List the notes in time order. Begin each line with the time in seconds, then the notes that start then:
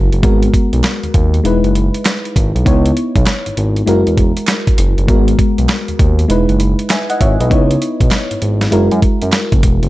Already playing: G#3 E4 F#4 A#4
0.13 F#1, closed hi-hat
0.22 G#1 G#3 B3 F#4 A#4, kick, closed hi-hat
0.43 closed hi-hat
0.54 kick, closed hi-hat
0.73 B1, closed hi-hat
0.84 snare, clap, closed hi-hat
1.03 D#2, closed hi-hat
1.14 D#2, kick, closed hi-hat
1.34 closed hi-hat
1.44 E1 G#3 D#4 E4 B4, closed hi-hat
1.64 F#1, closed hi-hat
1.75 closed hi-hat
1.94 closed hi-hat
2.05 snare, clap, closed hi-hat
2.25 closed hi-hat
2.36 G#1, kick, closed hi-hat
2.55 B1, closed hi-hat
2.65 C#2 B3 D#4 E4 C#5, kick, closed hi-hat
2.86 closed hi-hat
2.97 closed hi-hat
3.16 B1, kick, closed hi-hat
3.26 snare, clap, closed hi-hat
3.46 G#1, closed hi-hat
3.57 G#1, closed hi-hat
3.76 closed hi-hat
3.86 F#1 G#3 E4 F#4 A#4, closed hi-hat
4.07 E1, closed hi-hat
4.18 kick, closed hi-hat
4.37 closed hi-hat
4.47 snare, clap, closed hi-hat
4.67 kick, closed hi-hat
4.78 F#1, closed hi-hat
4.98 F#1, closed hi-hat
5.07 G#1 G#3 B3 F#4 A#4, kick, closed hi-hat
5.28 closed hi-hat
5.39 kick, closed hi-hat
5.58 B1, closed hi-hat
5.69 snare, clap, closed hi-hat
5.88 D#2, closed hi-hat
5.99 D#2, kick, closed hi-hat
6.19 closed hi-hat
6.28 E1 G#3 D#4 E4 B4, closed hi-hat
6.49 F#1, closed hi-hat
6.60 closed hi-hat
6.79 closed hi-hat
6.90 E5 G#5, snare, clap, closed hi-hat
7.10 D#5 F#5, closed hi-hat
7.21 G#1 C#5 E5, kick, closed hi-hat
7.40 B1 B4 D#5, closed hi-hat
7.50 C#2 B3 D#4 E4 C#5, kick, closed hi-hat
7.71 closed hi-hat
7.82 closed hi-hat
8.01 B1, kick, closed hi-hat
8.11 snare, clap, closed hi-hat
8.31 G#1, closed hi-hat
8.42 G#1, closed hi-hat
8.61 snare, closed hi-hat
8.71 F#1 G#3 E4 F#4 A#4, closed hi-hat
8.91 F#2, closed hi-hat
9.02 kick, closed hi-hat
9.22 F#2, closed hi-hat
9.32 snare, clap, closed hi-hat
9.52 F#1, kick, closed hi-hat
9.63 E1, kick, closed hi-hat
9.83 F#1, closed hi-hat